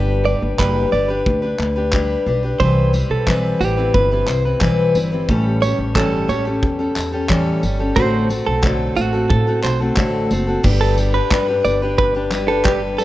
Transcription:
Already playing: G1 G3 D4 G4 B4
0.25 G3 D4 G4 B4 D5
0.42 G1
0.59 F#1 G3 D4 G4 B4, kick, clap
0.92 G1 G3 D4 G4 B4 D5
1.08 D4 G4 B4
1.26 D2, kick
1.42 D4 G4 B4
1.59 D2, clap
1.76 D4 G4 B4
1.93 G3 D4 G4 B4, kick, clap
2.26 B1 G3 D4 G4 B4
2.43 D4 G4 B4
2.60 C2 C3 E3 G3 C4 E4 B4 C5, kick
2.93 G3 C4 E4 B4, tambourine
3.10 B1 A4
3.27 E3 G3 C4 E4 B4, kick, clap
3.60 A1 C4 E4 G4 B4, tambourine
3.77 G3 C4 E4 B4
3.94 G1 B4, kick
4.11 G3 C4 E4 B4
4.27 C2 C5, clap, tambourine
4.45 G3 C4 E4 B4
4.61 B1 E3 G3 C4 E4 B4, kick, clap
4.95 G1 G3 C4 E4 B4, tambourine
5.12 G3 C4 E4 B4
5.29 A1 A2 E3 G3 C#4 G4 A4, kick
5.62 G3 C#4 G4 A4 C#5, tambourine
5.79 A1
5.95 G1 A2 E3 G3 C#4 G4 A4, kick, clap
6.28 A1 G3 C#4 G4 A4 C#5, tambourine
6.45 G3 C#4 G4 A4
6.63 E2, kick
6.79 G3 C#4 G4 A4
6.96 E2, clap, tambourine
7.12 G3 C#4 G4 A4
7.29 A2 E3 G3 C#4 G4 A4, kick, clap
7.63 G1 G3 C#4 G4 A4, tambourine
7.79 G3 C#4 G4 A4
7.96 A1 A2 D3 A3 C4 F#4 A4 C5, kick
8.29 A3 C4 F#4 A4, tambourine
8.47 B1 A4
8.62 A2 D3 A3 C4 F#4 A4, kick, clap
8.95 A1 A3 C4 F#4 A4, tambourine
9.13 A3 C4 F#4 A4
9.30 A2 A4, kick
9.47 A3 C4 F#4 A4
9.63 B1 C5, clap, tambourine
9.80 A3 C4 F#4 A4
9.97 A1 A2 D3 A3 C4 F#4 A4, kick, clap
10.31 F#1 A3 C4 F#4 A4, tambourine
10.47 A3 C4 F#4 A4
10.63 G1 G3 D4 G4 B4, kick, crash
10.81 A4
10.97 G3 D4 G4 B4, tambourine
11.14 D4 G4 B4
11.31 G2 G3 D4 G4 B4, kick, clap
11.48 D4 G4 B4
11.65 G1 D5, tambourine
11.82 D4 G4 B4
11.98 B4, kick
12.14 D4 G4 B4
12.31 G3 D4 G4 B4, clap, tambourine
12.48 D4 G4 A4 B4
12.64 G3 D4 G4 B4, kick, clap
12.98 G3 D4 G4 A4 B4, tambourine

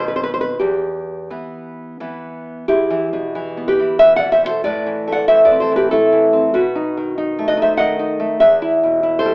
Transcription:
Already playing: B2 D#3 C4
0.08 B4
0.16 C5
0.23 B4
0.34 C5
0.41 B4
0.59 E2 G4
1.30 E3 B3
2.00 E3 B3
2.68 E2 E4 G4
2.90 E3
3.13 B2
3.35 E3
3.57 B3
3.68 G4 B4
3.79 E3
3.99 B2 B4 E5
4.16 D5 F#5
4.23 E3
4.32 C5 E5
4.44 B3 C5
4.48 A4
4.64 A2 B4 D5
4.86 E3
5.07 A3
5.12 D5 F#5
5.28 E3 C5 E5
5.45 B4 D5
5.51 C4
5.60 A4 C5
5.72 E3
5.76 G4 B4
5.91 A3 E4 A4
6.12 E3
6.33 C4
6.54 B2 F#4 B4
6.75 D#4
6.97 D#3
7.18 D#4
7.39 A3
7.48 B4 D#5
7.57 D#4
7.62 C5 E5
7.77 D#3 D#5 F#5
7.99 D#4
8.20 A3
8.40 E2 B4 E5
8.62 E4
8.83 B2
9.03 E4
9.19 A4 C5
9.25 G3

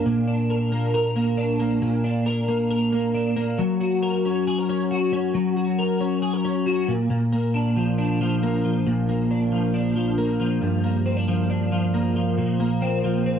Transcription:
Already playing: A#3 D4 A#4
0.06 A#2
0.28 D4
0.50 A#4
0.72 A#3
0.94 A#4
1.16 A#3
1.38 D4
1.60 A#3
1.82 A#2
2.04 D4
2.26 A#4
2.48 A#3
2.70 A#4
2.92 A#3
3.14 D4
3.36 A#3
3.59 F#3
3.81 F#4
4.03 A#4
4.25 C#4
4.47 G#4
4.58 A#4
4.69 C#4
4.91 F#4
5.13 C#4
5.34 F#3
5.57 F#4
5.79 A#4
6.00 C#4
6.22 G#4
6.33 A#4
6.45 C#4
6.66 F#4
6.88 A#2
7.10 A#2
7.32 A#3
7.54 D4
7.77 F3
7.98 D4
8.21 F3
8.43 A#3
8.65 F3
8.87 A#2
9.09 A#3
9.31 D4
9.52 F3
9.74 D4
9.96 F3
10.18 A#3
10.40 F3
10.62 G2
10.84 A#3
11.06 C4
11.17 D4
11.28 F3
11.50 D4
11.72 F3
11.94 A#3
12.16 F3
12.38 A#2
12.60 A#3
12.82 C4
13.04 F3
13.26 C4

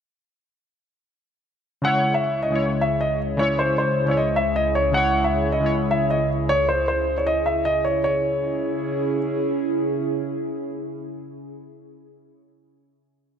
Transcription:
1.82 C#2 C#3 G#3 E4 G#4 F#5
1.87 C#5
2.14 E5
2.43 D#5
2.50 C#3 G#3 E4
2.55 C#5
2.81 E5
3.01 D#5
3.37 C#3 G#3 E4 C#5
3.42 C#5
3.59 C5
3.78 C5
4.06 C#3 G#3 E4 C#5
4.11 C#5
4.17 D#5
4.36 E5
4.56 D#5
4.75 C#5
4.92 C#3 G#3 E4 F#5
4.97 C#5
5.24 E5
5.52 D#5
5.61 C#3 G#3 E4
5.66 C#5
5.91 E5
6.10 D#5
6.49 C#5
6.69 C5
6.88 C5
7.18 C#5
7.27 D#5
7.46 E5
7.65 D#5
7.85 C#5
8.04 C#3 C#4 E4 G#4 C#5

